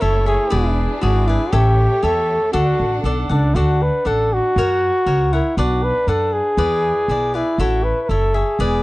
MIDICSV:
0, 0, Header, 1, 5, 480
1, 0, Start_track
1, 0, Key_signature, 2, "major"
1, 0, Tempo, 503778
1, 503, Time_signature, 2, 2, 24, 8
1, 8411, End_track
2, 0, Start_track
2, 0, Title_t, "Cavaquinho"
2, 0, Program_c, 0, 24
2, 6, Note_on_c, 0, 64, 48
2, 12, Note_on_c, 0, 69, 45
2, 16, Note_on_c, 0, 76, 56
2, 20, Note_on_c, 0, 73, 46
2, 239, Note_off_c, 0, 76, 0
2, 250, Note_on_c, 0, 76, 40
2, 251, Note_off_c, 0, 69, 0
2, 251, Note_off_c, 0, 73, 0
2, 257, Note_off_c, 0, 64, 0
2, 262, Note_on_c, 0, 69, 31
2, 262, Note_on_c, 0, 73, 40
2, 478, Note_off_c, 0, 69, 0
2, 479, Note_on_c, 0, 64, 66
2, 482, Note_on_c, 0, 68, 70
2, 488, Note_off_c, 0, 73, 0
2, 488, Note_off_c, 0, 76, 0
2, 491, Note_on_c, 0, 74, 78
2, 492, Note_on_c, 0, 71, 69
2, 955, Note_off_c, 0, 64, 0
2, 966, Note_off_c, 0, 68, 0
2, 966, Note_on_c, 0, 64, 52
2, 968, Note_off_c, 0, 71, 0
2, 969, Note_off_c, 0, 74, 0
2, 978, Note_on_c, 0, 68, 52
2, 980, Note_on_c, 0, 71, 48
2, 981, Note_on_c, 0, 74, 50
2, 1204, Note_off_c, 0, 74, 0
2, 1216, Note_off_c, 0, 64, 0
2, 1216, Note_on_c, 0, 74, 49
2, 1219, Note_off_c, 0, 71, 0
2, 1222, Note_off_c, 0, 68, 0
2, 1231, Note_on_c, 0, 71, 40
2, 1235, Note_on_c, 0, 68, 38
2, 1449, Note_off_c, 0, 68, 0
2, 1452, Note_off_c, 0, 74, 0
2, 1453, Note_on_c, 0, 67, 70
2, 1453, Note_on_c, 0, 69, 69
2, 1456, Note_on_c, 0, 76, 71
2, 1457, Note_off_c, 0, 71, 0
2, 1461, Note_on_c, 0, 73, 76
2, 1919, Note_off_c, 0, 67, 0
2, 1927, Note_off_c, 0, 69, 0
2, 1928, Note_off_c, 0, 73, 0
2, 1931, Note_on_c, 0, 67, 53
2, 1931, Note_on_c, 0, 69, 44
2, 1937, Note_off_c, 0, 76, 0
2, 1940, Note_on_c, 0, 73, 57
2, 1949, Note_on_c, 0, 76, 55
2, 2402, Note_off_c, 0, 69, 0
2, 2411, Note_off_c, 0, 67, 0
2, 2411, Note_off_c, 0, 73, 0
2, 2413, Note_on_c, 0, 69, 73
2, 2415, Note_on_c, 0, 62, 68
2, 2415, Note_on_c, 0, 74, 77
2, 2416, Note_off_c, 0, 76, 0
2, 2420, Note_on_c, 0, 78, 64
2, 2885, Note_off_c, 0, 62, 0
2, 2897, Note_on_c, 0, 62, 41
2, 2898, Note_off_c, 0, 69, 0
2, 2899, Note_off_c, 0, 74, 0
2, 2908, Note_on_c, 0, 69, 50
2, 2913, Note_on_c, 0, 74, 52
2, 2914, Note_off_c, 0, 78, 0
2, 2918, Note_on_c, 0, 78, 53
2, 3127, Note_off_c, 0, 78, 0
2, 3137, Note_off_c, 0, 74, 0
2, 3138, Note_on_c, 0, 78, 50
2, 3142, Note_off_c, 0, 69, 0
2, 3143, Note_off_c, 0, 62, 0
2, 3149, Note_on_c, 0, 74, 47
2, 3153, Note_on_c, 0, 69, 40
2, 3380, Note_off_c, 0, 69, 0
2, 3382, Note_off_c, 0, 78, 0
2, 3383, Note_off_c, 0, 74, 0
2, 3389, Note_on_c, 0, 62, 63
2, 3391, Note_on_c, 0, 69, 58
2, 3395, Note_on_c, 0, 74, 61
2, 3399, Note_on_c, 0, 78, 64
2, 3846, Note_off_c, 0, 62, 0
2, 3851, Note_off_c, 0, 69, 0
2, 3856, Note_off_c, 0, 74, 0
2, 3858, Note_on_c, 0, 62, 42
2, 3862, Note_on_c, 0, 69, 48
2, 3867, Note_on_c, 0, 74, 46
2, 3870, Note_off_c, 0, 78, 0
2, 3874, Note_on_c, 0, 78, 56
2, 4345, Note_off_c, 0, 62, 0
2, 4347, Note_off_c, 0, 69, 0
2, 4349, Note_off_c, 0, 74, 0
2, 4353, Note_off_c, 0, 78, 0
2, 4361, Note_on_c, 0, 66, 56
2, 4365, Note_on_c, 0, 70, 62
2, 4368, Note_on_c, 0, 73, 66
2, 4373, Note_on_c, 0, 78, 73
2, 4814, Note_off_c, 0, 66, 0
2, 4814, Note_off_c, 0, 70, 0
2, 4819, Note_off_c, 0, 73, 0
2, 4825, Note_on_c, 0, 66, 46
2, 4825, Note_on_c, 0, 70, 56
2, 4826, Note_off_c, 0, 78, 0
2, 4830, Note_on_c, 0, 73, 47
2, 4838, Note_on_c, 0, 78, 49
2, 5065, Note_off_c, 0, 78, 0
2, 5068, Note_off_c, 0, 73, 0
2, 5069, Note_off_c, 0, 66, 0
2, 5069, Note_off_c, 0, 70, 0
2, 5077, Note_on_c, 0, 78, 46
2, 5079, Note_on_c, 0, 73, 33
2, 5091, Note_on_c, 0, 70, 34
2, 5310, Note_off_c, 0, 78, 0
2, 5311, Note_off_c, 0, 70, 0
2, 5311, Note_off_c, 0, 73, 0
2, 5314, Note_on_c, 0, 71, 62
2, 5315, Note_on_c, 0, 62, 72
2, 5322, Note_on_c, 0, 74, 72
2, 5328, Note_on_c, 0, 78, 65
2, 5779, Note_off_c, 0, 62, 0
2, 5783, Note_off_c, 0, 71, 0
2, 5788, Note_off_c, 0, 74, 0
2, 5789, Note_off_c, 0, 78, 0
2, 5791, Note_on_c, 0, 62, 44
2, 5795, Note_on_c, 0, 71, 52
2, 5799, Note_on_c, 0, 74, 47
2, 5801, Note_on_c, 0, 78, 53
2, 6261, Note_off_c, 0, 71, 0
2, 6264, Note_off_c, 0, 74, 0
2, 6268, Note_off_c, 0, 62, 0
2, 6272, Note_off_c, 0, 78, 0
2, 6272, Note_on_c, 0, 64, 68
2, 6272, Note_on_c, 0, 68, 62
2, 6273, Note_on_c, 0, 71, 72
2, 6276, Note_on_c, 0, 74, 71
2, 6748, Note_off_c, 0, 68, 0
2, 6748, Note_off_c, 0, 71, 0
2, 6750, Note_off_c, 0, 74, 0
2, 6754, Note_off_c, 0, 64, 0
2, 6758, Note_on_c, 0, 64, 41
2, 6763, Note_on_c, 0, 68, 43
2, 6772, Note_on_c, 0, 71, 46
2, 6773, Note_on_c, 0, 74, 54
2, 6980, Note_off_c, 0, 74, 0
2, 6990, Note_off_c, 0, 71, 0
2, 6992, Note_on_c, 0, 74, 39
2, 6994, Note_off_c, 0, 64, 0
2, 6996, Note_off_c, 0, 68, 0
2, 7002, Note_on_c, 0, 71, 41
2, 7012, Note_on_c, 0, 68, 34
2, 7227, Note_off_c, 0, 74, 0
2, 7232, Note_off_c, 0, 71, 0
2, 7236, Note_off_c, 0, 68, 0
2, 7237, Note_on_c, 0, 64, 66
2, 7239, Note_on_c, 0, 69, 64
2, 7246, Note_on_c, 0, 73, 67
2, 7246, Note_on_c, 0, 76, 66
2, 7708, Note_off_c, 0, 64, 0
2, 7711, Note_off_c, 0, 69, 0
2, 7712, Note_off_c, 0, 73, 0
2, 7712, Note_on_c, 0, 64, 38
2, 7722, Note_on_c, 0, 69, 41
2, 7723, Note_on_c, 0, 73, 49
2, 7724, Note_off_c, 0, 76, 0
2, 7728, Note_on_c, 0, 76, 52
2, 7938, Note_off_c, 0, 76, 0
2, 7949, Note_on_c, 0, 76, 49
2, 7951, Note_off_c, 0, 64, 0
2, 7951, Note_off_c, 0, 73, 0
2, 7956, Note_off_c, 0, 69, 0
2, 7963, Note_on_c, 0, 73, 38
2, 7968, Note_on_c, 0, 69, 31
2, 8185, Note_off_c, 0, 76, 0
2, 8189, Note_off_c, 0, 69, 0
2, 8192, Note_off_c, 0, 73, 0
2, 8192, Note_on_c, 0, 64, 62
2, 8193, Note_on_c, 0, 68, 69
2, 8196, Note_on_c, 0, 71, 69
2, 8200, Note_on_c, 0, 74, 71
2, 8411, Note_off_c, 0, 64, 0
2, 8411, Note_off_c, 0, 68, 0
2, 8411, Note_off_c, 0, 71, 0
2, 8411, Note_off_c, 0, 74, 0
2, 8411, End_track
3, 0, Start_track
3, 0, Title_t, "Trumpet"
3, 0, Program_c, 1, 56
3, 16, Note_on_c, 1, 69, 70
3, 255, Note_off_c, 1, 69, 0
3, 260, Note_on_c, 1, 68, 73
3, 689, Note_off_c, 1, 68, 0
3, 960, Note_on_c, 1, 66, 64
3, 1215, Note_on_c, 1, 64, 70
3, 1229, Note_off_c, 1, 66, 0
3, 1445, Note_on_c, 1, 67, 89
3, 1460, Note_off_c, 1, 64, 0
3, 1940, Note_on_c, 1, 69, 82
3, 1954, Note_off_c, 1, 67, 0
3, 2402, Note_off_c, 1, 69, 0
3, 2407, Note_on_c, 1, 66, 76
3, 2861, Note_off_c, 1, 66, 0
3, 3156, Note_on_c, 1, 62, 73
3, 3386, Note_on_c, 1, 66, 74
3, 3400, Note_off_c, 1, 62, 0
3, 3647, Note_on_c, 1, 71, 71
3, 3662, Note_off_c, 1, 66, 0
3, 3879, Note_on_c, 1, 69, 80
3, 3893, Note_off_c, 1, 71, 0
3, 4130, Note_on_c, 1, 66, 89
3, 4145, Note_off_c, 1, 69, 0
3, 5081, Note_on_c, 1, 64, 74
3, 5096, Note_off_c, 1, 66, 0
3, 5307, Note_off_c, 1, 64, 0
3, 5312, Note_on_c, 1, 66, 72
3, 5561, Note_on_c, 1, 71, 82
3, 5576, Note_off_c, 1, 66, 0
3, 5797, Note_on_c, 1, 69, 72
3, 5811, Note_off_c, 1, 71, 0
3, 6031, Note_on_c, 1, 68, 83
3, 6045, Note_off_c, 1, 69, 0
3, 7007, Note_on_c, 1, 64, 68
3, 7021, Note_off_c, 1, 68, 0
3, 7245, Note_on_c, 1, 66, 66
3, 7260, Note_off_c, 1, 64, 0
3, 7469, Note_on_c, 1, 71, 64
3, 7483, Note_off_c, 1, 66, 0
3, 7648, Note_off_c, 1, 71, 0
3, 7648, Note_on_c, 1, 71, 52
3, 7711, Note_on_c, 1, 69, 71
3, 7725, Note_off_c, 1, 71, 0
3, 7957, Note_on_c, 1, 68, 63
3, 7971, Note_off_c, 1, 69, 0
3, 8411, Note_off_c, 1, 68, 0
3, 8411, End_track
4, 0, Start_track
4, 0, Title_t, "Violin section"
4, 0, Program_c, 2, 48
4, 0, Note_on_c, 2, 57, 66
4, 0, Note_on_c, 2, 64, 64
4, 0, Note_on_c, 2, 73, 74
4, 489, Note_off_c, 2, 57, 0
4, 491, Note_off_c, 2, 73, 0
4, 498, Note_on_c, 2, 62, 67
4, 500, Note_on_c, 2, 68, 78
4, 1437, Note_off_c, 2, 64, 0
4, 1449, Note_off_c, 2, 62, 0
4, 1449, Note_off_c, 2, 68, 0
4, 1450, Note_on_c, 2, 67, 62
4, 1452, Note_on_c, 2, 57, 71
4, 1453, Note_on_c, 2, 73, 73
4, 2403, Note_off_c, 2, 67, 0
4, 2404, Note_off_c, 2, 57, 0
4, 2404, Note_off_c, 2, 73, 0
4, 2404, Note_on_c, 2, 78, 64
4, 2407, Note_on_c, 2, 62, 60
4, 2408, Note_on_c, 2, 69, 55
4, 3369, Note_off_c, 2, 78, 0
4, 3370, Note_off_c, 2, 62, 0
4, 3371, Note_off_c, 2, 69, 0
4, 8411, End_track
5, 0, Start_track
5, 0, Title_t, "Upright bass"
5, 0, Program_c, 3, 32
5, 21, Note_on_c, 3, 30, 70
5, 334, Note_off_c, 3, 30, 0
5, 499, Note_on_c, 3, 28, 81
5, 812, Note_off_c, 3, 28, 0
5, 980, Note_on_c, 3, 32, 76
5, 1292, Note_off_c, 3, 32, 0
5, 1456, Note_on_c, 3, 33, 97
5, 1769, Note_off_c, 3, 33, 0
5, 1935, Note_on_c, 3, 40, 72
5, 2248, Note_off_c, 3, 40, 0
5, 2420, Note_on_c, 3, 38, 80
5, 2578, Note_off_c, 3, 38, 0
5, 2664, Note_on_c, 3, 33, 69
5, 2878, Note_off_c, 3, 33, 0
5, 2892, Note_on_c, 3, 35, 67
5, 3116, Note_off_c, 3, 35, 0
5, 3143, Note_on_c, 3, 37, 73
5, 3360, Note_off_c, 3, 37, 0
5, 3380, Note_on_c, 3, 38, 85
5, 3696, Note_off_c, 3, 38, 0
5, 3865, Note_on_c, 3, 33, 58
5, 4179, Note_off_c, 3, 33, 0
5, 4345, Note_on_c, 3, 42, 82
5, 4658, Note_off_c, 3, 42, 0
5, 4824, Note_on_c, 3, 37, 64
5, 5137, Note_off_c, 3, 37, 0
5, 5309, Note_on_c, 3, 35, 83
5, 5620, Note_off_c, 3, 35, 0
5, 5783, Note_on_c, 3, 42, 64
5, 6096, Note_off_c, 3, 42, 0
5, 6263, Note_on_c, 3, 40, 84
5, 6575, Note_off_c, 3, 40, 0
5, 6748, Note_on_c, 3, 35, 65
5, 7059, Note_off_c, 3, 35, 0
5, 7225, Note_on_c, 3, 33, 80
5, 7537, Note_off_c, 3, 33, 0
5, 7709, Note_on_c, 3, 30, 70
5, 8019, Note_off_c, 3, 30, 0
5, 8183, Note_on_c, 3, 28, 77
5, 8411, Note_off_c, 3, 28, 0
5, 8411, End_track
0, 0, End_of_file